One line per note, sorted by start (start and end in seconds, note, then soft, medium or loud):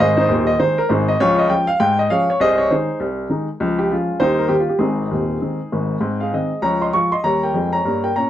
0.00 0.23 G#1 medium
0.00 0.24 G#2 medium
0.00 0.16 G#4 medium
0.00 0.15 C5 medium
0.00 0.18 D#5 loud
0.17 0.45 D#4 medium
0.17 0.46 G#4 medium
0.17 0.47 C5 medium
0.29 0.53 D#1 medium
0.29 0.53 D#2 medium
0.47 0.59 D#5 medium
0.59 0.76 D#3 medium
0.59 0.76 G#3 medium
0.59 0.76 D#4 medium
0.59 0.78 C5 medium
0.78 0.89 A#4 medium
0.89 1.14 G#1 medium
0.89 1.14 G#2 medium
0.89 1.08 D#4 medium
0.89 1.08 G#4 medium
0.89 1.08 C5 medium
1.08 1.20 D#5 medium
1.20 1.46 C#2 medium
1.20 1.38 F3 soft
1.20 1.38 F4 medium
1.20 1.38 G#4 medium
1.20 1.39 C#5 loud
1.39 1.50 D#5 medium
1.49 1.66 F3 soft
1.49 1.66 G#3 soft
1.49 1.67 C#4 medium
1.49 1.68 G5 medium
1.67 1.79 F5 loud
1.80 2.06 G#2 medium
1.80 1.99 G5 loud
1.99 2.10 D#5 medium
2.10 2.27 F3 soft
2.10 2.27 G#3 soft
2.10 2.27 C#4 soft
2.10 2.28 G#4 medium
2.10 2.28 C#5 medium
2.10 2.29 F5 loud
2.30 2.41 C#5 medium
2.40 2.66 C2 medium
2.40 2.58 G#4 medium
2.40 2.58 C5 medium
2.40 2.59 D#5 loud
2.58 2.70 C#5 medium
2.71 2.87 D#3 soft
2.71 2.87 G#3 soft
2.71 2.99 D#4 medium
2.71 2.99 G#4 medium
2.71 3.01 C5 medium
3.00 3.26 C2 medium
3.29 3.46 D#3 soft
3.29 3.47 G#3 medium
3.29 3.47 D#4 soft
3.60 3.86 C#2 medium
3.60 3.78 F3 soft
3.79 3.91 G4 medium
3.92 4.08 F3 soft
3.92 4.20 G#3 soft
3.92 4.20 C#4 soft
3.92 4.22 F4 medium
4.20 4.46 D#2 medium
4.20 4.38 G3 soft
4.20 4.39 D#4 medium
4.20 4.39 G4 medium
4.20 4.39 C5 loud
4.39 4.51 A#4 medium
4.49 4.66 D#3 soft
4.49 4.66 G3 soft
4.49 4.66 A#3 soft
4.49 4.60 G4 medium
4.60 4.71 F4 medium
4.69 4.80 G4 medium
4.79 5.04 G#1 medium
4.79 5.04 G#2 medium
4.79 5.40 C4 medium
4.79 5.86 D#4 soft
4.79 5.90 G#4 medium
5.11 5.36 D#1 medium
5.11 5.36 D#2 medium
5.41 5.59 D#3 soft
5.41 5.58 G#3 soft
5.41 5.58 C4 soft
5.72 5.96 G#1 medium
5.72 5.97 G#2 medium
6.01 6.27 G#2 medium
6.01 6.19 C4 soft
6.20 6.32 G#4 soft
6.20 6.32 F5 medium
6.33 6.50 D#3 soft
6.33 6.50 G#3 soft
6.33 6.50 C4 soft
6.33 6.62 G#4 soft
6.33 6.63 D#5 medium
6.62 6.88 C#2 medium
6.62 6.81 F3 soft
6.62 6.81 C#5 medium
6.62 6.81 A#5 medium
6.81 6.92 D#5 medium
6.81 6.93 C6 medium
6.93 7.10 F3 soft
6.93 7.10 G#3 soft
6.93 7.11 F4 soft
6.93 7.11 F5 medium
6.93 7.12 C#6 medium
7.12 7.23 D#5 medium
7.12 7.23 C6 medium
7.24 7.48 D#2 medium
7.24 7.49 G3 medium
7.24 7.42 C#5 medium
7.24 7.42 A#5 medium
7.43 7.72 A#4 soft
7.43 7.73 G5 medium
7.54 7.78 F2 medium
7.54 7.79 G#3 medium
7.73 8.01 C#5 medium
7.73 8.03 A#5 medium
7.85 8.09 G2 medium
7.85 8.10 A#3 medium
8.04 8.14 A#4 soft
8.04 8.14 G5 medium
8.16 8.30 A#2 medium
8.16 8.30 C#4 medium
8.16 8.30 C#5 medium
8.16 8.30 A#5 medium